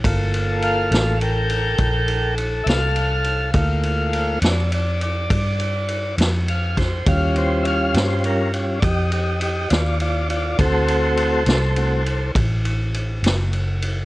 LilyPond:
<<
  \new Staff \with { instrumentName = "Tonewheel organ" } { \time 12/8 \key g \minor \tempo 4. = 68 << { r4 f''4 <bes' g''>2 r8 <e'' f''>4.~ | <e'' f''>4. d''8 d''8 d''2 r8 f''8 c''8 | f''8 c''8 <e'' f''>8 c''8 <des' bes'>8 r8 <g' d'' ees''>8 <g' ees''>8 <g' ees''>8 <f' d''>8 <f' d''>8 <f' d''>8 | <a' c''>2. r2. | } \\ { <bes f' a'>4. <a bes f'>8 r1 | <a bes f'>4. r1 r8 | <g des' f'>2~ <g des' f'>8 <g des' f'>8 r2. | <a c' fis'>4. r8 <a c' fis'>8 r2. r8 | } >> }
  \new Staff \with { instrumentName = "Fingered electric bass" } { \clef bass \time 12/8 \key g \minor g,,4. a,,4. bes,,4. c,4. | d,4. f,4. g,4. f,4. | ees,4. g,4. f,4. ees,4. | d,4. c,4. a,,4. fis,,4. | }
  \new DrumStaff \with { instrumentName = "Drums" } \drummode { \time 12/8 <bd cymr>8 cymr8 cymr8 <cymr sn>8 cymr8 cymr8 <bd cymr>8 cymr8 cymr8 <cymr sn>8 cymr8 cymr8 | <bd cymr>8 cymr8 cymr8 <cymr sn>8 cymr8 cymr8 <bd cymr>8 cymr8 cymr8 <cymr sn>8 cymr8 <bd cymr sn>8 | <bd cymr>8 cymr8 cymr8 <cymr sn>8 cymr8 cymr8 <bd cymr>8 cymr8 cymr8 <cymr sn>8 cymr8 cymr8 | <bd cymr>8 cymr8 cymr8 <cymr sn>8 cymr8 cymr8 <bd cymr>8 cymr8 cymr8 <cymr sn>8 cymr8 cymr8 | }
>>